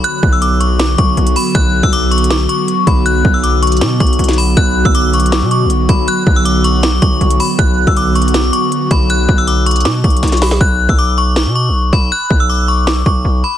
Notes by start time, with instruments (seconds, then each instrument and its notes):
Already playing: analog synth pad D3 F#3 B3 F#4
0.04 synth bell F#6, closed hi-hat
0.23 808-style bass B1, kick
0.33 synth bell E6
0.42 synth bell D6, closed hi-hat
0.60 synth bell C#6, closed hi-hat
0.79 synth bell D6, snare, closed hi-hat
0.98 808-style bass B1, synth bell C#6, kick, closed hi-hat
1.17 808-style bass B1, closed hi-hat
1.27 closed hi-hat
1.36 synth bell B5, open hi-hat
1.55 808-style bass B1, synth bell F#6, kick, closed hi-hat
1.83 808-style bass B1, synth bell E6, kick
1.93 synth bell D6, closed hi-hat
2.11 synth bell C#6, closed hi-hat
2.18 closed hi-hat
2.24 closed hi-hat
2.30 synth bell D6, snare, closed hi-hat
2.49 synth bell C#6, closed hi-hat
2.68 closed hi-hat
2.87 808-style bass B1, synth bell B5, kick, closed hi-hat
3.06 synth bell F#6, closed hi-hat
3.25 808-style bass B1, kick
3.34 synth bell E6
3.43 synth bell D6, closed hi-hat
3.62 synth bell C#6, closed hi-hat
3.67 closed hi-hat
3.72 closed hi-hat
3.77 closed hi-hat
3.81 808-style bass B2, synth bell D6, snare, closed hi-hat
4.00 808-style bass B1, synth bell C#6, kick, closed hi-hat
4.07 closed hi-hat
4.13 closed hi-hat
4.19 808-style bass B1, closed hi-hat
4.24 closed hi-hat
4.29 snare, closed hi-hat
4.33 closed hi-hat
4.38 synth bell B5, open hi-hat
4.57 808-style bass B1, analog synth pad D3 F#3, synth bell F#6, kick, closed hi-hat
4.85 808-style bass B1, synth bell E6, kick
4.95 synth bell D6, closed hi-hat
5.13 synth bell C#6, closed hi-hat
5.20 closed hi-hat
5.26 closed hi-hat
5.32 synth bell D6, snare, closed hi-hat
5.42 808-style bass B2
5.51 synth bell C#6, closed hi-hat
5.65 808-style bass B1
5.70 closed hi-hat
5.89 808-style bass B1, synth bell B5, kick, closed hi-hat
6.08 synth bell F#6, closed hi-hat
6.27 808-style bass B1, kick
6.36 synth bell E6
6.45 synth bell D6, closed hi-hat
6.64 synth bell C#6, closed hi-hat
6.83 synth bell D6, snare, closed hi-hat
7.02 808-style bass B1, synth bell C#6, kick, closed hi-hat
7.21 808-style bass B1, closed hi-hat
7.31 closed hi-hat
7.40 synth bell B5, open hi-hat
7.59 808-style bass B1, analog synth pad D3 B3 F#4, synth bell F#6, kick, closed hi-hat
7.87 808-style bass B1, synth bell E6, kick
7.97 synth bell D6, closed hi-hat
8.15 synth bell C#6, closed hi-hat
8.22 closed hi-hat
8.28 closed hi-hat
8.34 synth bell D6, snare, closed hi-hat
8.53 synth bell C#6, closed hi-hat
8.72 closed hi-hat
8.91 808-style bass B1, synth bell B5, kick, closed hi-hat
9.10 synth bell F#6, closed hi-hat
9.29 808-style bass B1, kick
9.38 synth bell E6
9.47 synth bell D6, closed hi-hat
9.66 synth bell C#6, closed hi-hat
9.71 closed hi-hat
9.76 closed hi-hat
9.80 closed hi-hat
9.85 808-style bass B2, synth bell D6, snare, closed hi-hat
10.04 808-style bass B1, synth bell C#6, kick, closed hi-hat
10.10 closed hi-hat
10.17 closed hi-hat
10.23 808-style bass B1, snare, closed hi-hat
10.28 closed hi-hat
10.32 snare, closed hi-hat
10.37 closed hi-hat
10.42 synth bell B5, snare, open hi-hat
10.51 snare
10.61 808-style bass B1, synth bell F#6, kick
10.89 808-style bass B1, synth bell E6, kick
10.99 synth bell D6
11.18 synth bell C#6
11.36 synth bell D6, snare
11.46 808-style bass B2
11.56 synth bell C#6
11.69 808-style bass B1
11.93 808-style bass B1, synth bell B5, kick
12.12 synth bell F#6
12.30 808-style bass B1, kick
12.40 synth bell E6
12.50 synth bell D6
12.68 synth bell C#6
12.87 synth bell D6, snare
13.06 808-style bass B1, synth bell C#6, kick
13.25 808-style bass B1
13.44 synth bell B5